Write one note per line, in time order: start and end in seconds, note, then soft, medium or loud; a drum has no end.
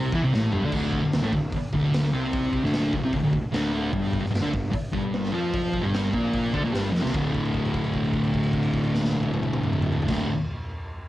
0.00 0.10 C2 loud
0.00 0.12 C3 medium
0.00 0.13 C4 loud
0.12 0.22 E2 loud
0.12 0.23 E3 medium
0.12 0.24 E4 loud
0.12 kick loud
0.23 0.33 C2 loud
0.23 0.32 C3 loud
0.23 0.33 C4 loud
0.34 0.52 A1 loud
0.34 0.53 A2 loud
0.34 0.53 A3 loud
0.34 snare medium
0.52 0.63 G1 loud
0.52 0.62 G2 medium
0.52 0.63 G3 loud
0.52 mid tom loud
0.63 0.72 D2 medium
0.63 0.73 D3 loud
0.63 0.74 D4 medium
0.63 floor tom medium
0.72 1.01 D1 loud
0.72 1.02 D2 medium
0.72 1.03 D3 loud
0.72 kick loud
0.72 crash loud
0.93 kick medium
1.03 1.12 D1 medium
1.03 1.13 D2 medium
1.12 1.22 D1 medium
1.12 1.22 D2 medium
1.12 snare loud
1.12 open hi-hat medium
1.22 1.33 A1 medium
1.22 1.32 A2 medium
1.22 1.33 A3 loud
1.32 1.52 D1 medium
1.32 1.49 D2 medium
1.32 kick medium
1.52 muted picked electric bass stroke soft
1.52 muted distorted electric guitar stroke medium
1.52 kick loud
1.52 open hi-hat medium
1.73 2.10 D1 loud
1.73 2.12 D2 loud
1.73 2.13 D3 loud
1.73 kick medium
1.94 snare loud
1.94 open hi-hat medium
2.13 2.60 C2 loud
2.13 2.63 C3 medium
2.13 2.63 C4 medium
2.33 kick loud
2.33 open hi-hat medium
2.53 kick medium
2.63 2.91 D1 loud
2.63 2.93 D2 medium
2.63 2.93 D3 loud
2.63 snare soft
2.73 snare loud
2.73 open hi-hat medium
2.93 3.02 D1 medium
2.93 3.03 D2 medium
2.93 kick medium
3.03 3.12 C2 medium
3.03 3.12 C3 loud
3.03 3.13 C4 loud
3.13 3.22 D1 medium
3.13 3.23 D2 medium
3.13 kick loud
3.13 open hi-hat medium
3.23 3.41 D1 medium
3.23 3.39 D2 medium
3.33 kick medium
3.52 3.90 D1 loud
3.52 3.92 D2 loud
3.52 3.93 D3 loud
3.52 snare loud
3.52 open hi-hat medium
3.92 4.21 G1 loud
3.92 4.20 G2 loud
3.92 4.23 G3 loud
3.92 kick loud
3.92 open hi-hat medium
4.13 kick medium
4.21 4.32 G1 medium
4.21 4.30 G2 medium
4.26 snare soft
4.31 4.42 G1 medium
4.31 4.42 G2 medium
4.31 open hi-hat medium
4.35 snare loud
4.41 4.53 D2 medium
4.41 4.51 D3 medium
4.41 4.52 D4 loud
4.52 4.72 G1 medium
4.52 4.68 G2 medium
4.52 kick medium
4.70 muted distorted electric guitar stroke medium
4.70 muted picked electric bass stroke soft
4.70 kick loud
4.70 open hi-hat medium
4.92 5.30 G1 medium
4.92 5.32 G2 loud
4.92 5.33 G3 loud
4.92 kick medium
5.13 snare loud
5.13 open hi-hat medium
5.32 5.80 F2 loud
5.32 5.82 F3 medium
5.32 5.83 F4 loud
5.54 kick loud
5.54 open hi-hat medium
5.73 kick medium
5.81 6.12 G1 loud
5.81 6.12 G2 medium
5.81 6.12 G3 loud
5.94 snare loud
5.94 open hi-hat medium
6.13 6.50 A#1 loud
6.13 6.52 A#2 medium
6.13 6.53 A#3 loud
6.13 kick medium
6.33 kick loud
6.33 open hi-hat medium
6.53 6.63 D2 medium
6.53 6.62 D3 medium
6.53 6.63 D4 loud
6.53 kick medium
6.63 6.73 A#1 loud
6.63 6.72 A#2 loud
6.63 6.72 A#3 loud
6.72 6.92 G1 medium
6.72 6.91 G2 medium
6.72 6.92 G3 loud
6.72 snare loud
6.72 open hi-hat medium
6.91 7.03 F1 loud
6.91 7.01 F2 medium
6.91 7.02 F3 loud
6.91 snare medium
7.02 7.13 C2 medium
7.02 7.11 C3 medium
7.02 7.12 C4 loud
7.02 snare loud
7.11 10.08 D2 medium
7.11 10.10 A2 loud
7.11 kick loud
7.11 crash medium
7.15 10.02 D1 loud
7.15 10.12 D3 loud
7.34 kick medium
7.34 crash soft
7.45 crash soft
7.54 kick medium
7.54 crash soft
7.65 crash soft
7.74 kick medium
7.74 crash medium
7.84 crash soft
7.93 kick medium
7.93 crash soft
8.04 crash soft
8.13 kick medium
8.13 crash soft
8.24 crash medium
8.34 kick medium
8.34 crash medium
8.43 crash medium
8.53 kick medium
8.53 crash soft
8.63 crash medium
8.74 kick medium
8.74 crash medium
8.84 crash medium
8.95 snare medium
9.05 snare loud
9.12 high tom medium
9.23 high tom loud
9.34 high tom loud
9.43 mid tom loud
9.54 mid tom loud
9.64 mid tom loud
9.73 mid tom loud
9.82 mid tom loud
9.93 floor tom loud
10.02 floor tom loud
10.08 10.26 D1 loud
10.08 10.27 D2 medium
10.08 10.28 A2 medium
10.08 10.29 D3 loud
10.08 kick loud
10.08 snare loud
10.08 crash loud